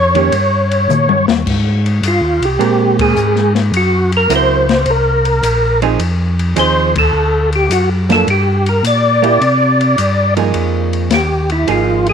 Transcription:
Already playing: F2 C#5
0.15 D#3 A#3 C#4 G4, ride
0.32 G2, ride
0.71 ride
0.89 A#2, hi-hat pedal, mid tom
1.09 G2, high tom
1.27 D#2, snare
1.46 G#2, kick, crash
1.86 ride
2.02 G2, hi-hat pedal, ride
2.08 F4
2.21 D#2
2.41 C2, ride
2.45 G4
2.59 A#2 G#3 C4 A#4, ride
2.99 G#4, kick, ride
3.16 G#2, hi-hat pedal
3.36 snare
3.55 snare, ride
3.72 F#2, ride
3.77 F#4
4.12 ride
4.17 A#4
4.29 C#2 F#3 C4 E4 A#4, hi-hat pedal, ride
4.36 C5
4.69 snare, ride
4.86 C2, ride
4.90 A#4
5.25 ride
5.43 A#1, hi-hat pedal, ride
5.82 F3 C4 D#4 G#4, ride
5.99 F2, ride
6.39 ride
6.56 D#2 F3 C4 D#4 G#4 C5, hi-hat pedal, ride
6.96 A4, kick, ride
7.13 D2
7.52 G4, ride
7.69 F#2 F#4, hi-hat pedal, ride
8.09 F3 A#3 D4 A4, snare, ride
8.27 G2 G4, ride
8.66 A#4, ride
8.83 A#2 D5, hi-hat pedal, ride
9.22 A#3 E4 G4, ride
9.41 C3, ride
9.81 ride
9.98 G2, hi-hat pedal, ride
10.37 F3 A#3 D#4 G#4, ride
10.54 F2, ride
10.93 ride
11.10 D#2 G4, snare, hi-hat pedal, ride
11.49 E4, ride
11.67 G#1 F3 A#3 D#4 F4 G#4, ride
12.06 G#4, ride

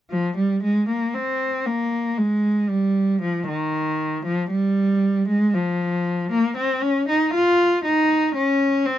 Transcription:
0.10 F3
0.36 G3
0.63 G#3
0.89 A#3
1.14 C4
1.66 A#3
2.17 G#3
2.69 G3
3.21 F3
3.48 D#3
4.25 F3
4.50 G3
5.28 G#3
5.54 F3
6.31 A#3
6.57 C4
6.82 C#4
7.09 D#4
7.34 F4
7.84 D#4
8.35 C#4
8.86 C4

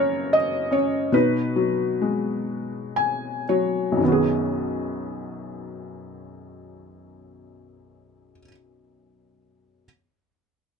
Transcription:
Already playing: F#2 C#3 A#3 A#4 B4 C#5
0.33 D#5
0.71 C#4 C#5
1.12 B2 D#4 B4
1.56 F#3
2.02 G#3
2.96 G#5
3.49 F#3 C#5
3.92 B1
3.97 F#2 D#3
4.04 B3
4.08 F#4 G#4

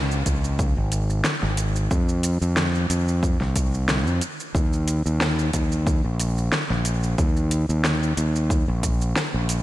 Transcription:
Already playing: C#2
0.11 shaker
0.26 C#2, kick, closed hi-hat, shaker
0.44 shaker
0.59 kick, shaker
0.77 G#1
0.92 closed hi-hat, shaker
1.10 shaker
1.24 snare, shaker
1.43 G#1, snare
1.57 closed hi-hat, shaker
1.76 shaker
1.91 F2, kick, shaker
2.09 shaker
2.23 closed hi-hat, shaker
2.42 F2, shaker
2.57 snare, shaker
2.75 shaker
2.90 F2, closed hi-hat, shaker
3.08 shaker
3.23 kick, shaker
3.41 C2, snare
3.56 kick, closed hi-hat, shaker
3.74 shaker
3.89 snare, shaker
4.07 F2, shaker
4.21 closed hi-hat, shaker
4.40 shaker
4.55 D#2, kick, shaker
4.73 shaker
4.88 closed hi-hat, shaker
5.06 D#2, shaker
5.21 snare, shaker
5.39 shaker
5.53 D#2, kick, closed hi-hat, shaker
5.72 shaker
5.87 kick, shaker
6.05 A#1
6.20 closed hi-hat, shaker
6.38 shaker
6.52 snare, shaker
6.70 A#1, snare
6.85 closed hi-hat, shaker
7.03 shaker
7.18 D#2, kick, shaker
7.37 shaker
7.51 closed hi-hat, shaker
7.69 D#2, shaker
7.84 snare, shaker
8.03 shaker
8.17 D#2, closed hi-hat, shaker
8.36 shaker
8.50 kick, shaker
8.68 A#1
8.83 kick, closed hi-hat, shaker
9.02 shaker
9.16 snare, shaker
9.34 A#1
9.49 closed hi-hat, shaker

